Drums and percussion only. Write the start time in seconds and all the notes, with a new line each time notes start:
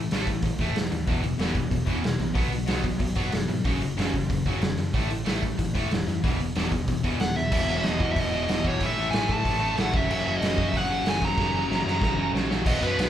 0.11 snare, open hi-hat
0.27 kick, open hi-hat
0.42 kick, open hi-hat
0.58 kick, open hi-hat
0.76 snare, open hi-hat
0.92 open hi-hat
1.07 kick, open hi-hat
1.24 open hi-hat
1.39 snare, open hi-hat
1.55 kick, open hi-hat
1.71 kick, open hi-hat
1.87 kick, open hi-hat
2.04 snare, open hi-hat
2.19 open hi-hat
2.35 kick, open hi-hat
2.52 open hi-hat
2.67 snare, open hi-hat
2.84 kick, open hi-hat
3.00 kick, open hi-hat
3.16 kick, open hi-hat
3.32 snare, open hi-hat
3.50 open hi-hat
3.65 kick, open hi-hat
3.82 open hi-hat
3.99 snare, open hi-hat
4.14 kick, open hi-hat
4.30 kick, open hi-hat
4.46 kick, open hi-hat
4.62 snare, open hi-hat
4.78 open hi-hat
4.94 kick, open hi-hat
5.10 open hi-hat
5.26 snare, open hi-hat
5.43 kick, open hi-hat
5.59 kick, open hi-hat
5.75 kick, open hi-hat
5.91 snare, open hi-hat
6.08 open hi-hat
6.24 kick, open hi-hat
6.40 open hi-hat
6.56 snare, open hi-hat
6.71 kick, open hi-hat
6.88 kick, open hi-hat
7.04 kick, open hi-hat
7.20 snare, open hi-hat
7.37 snare
7.52 kick, crash
7.83 snare, open hi-hat
8.00 kick
8.16 kick, open hi-hat
8.48 snare, open hi-hat
8.65 kick
8.80 kick, open hi-hat
9.13 snare, open hi-hat
9.29 kick
9.45 kick, open hi-hat
9.77 snare, open hi-hat
9.94 kick
10.11 crash
10.42 snare, open hi-hat
10.58 kick
10.74 kick, open hi-hat
11.06 snare, open hi-hat
11.22 kick
11.38 kick, snare
11.71 snare
11.87 snare
12.02 kick, snare
12.36 snare
12.51 snare
12.66 kick, crash
12.82 crash
12.99 snare, crash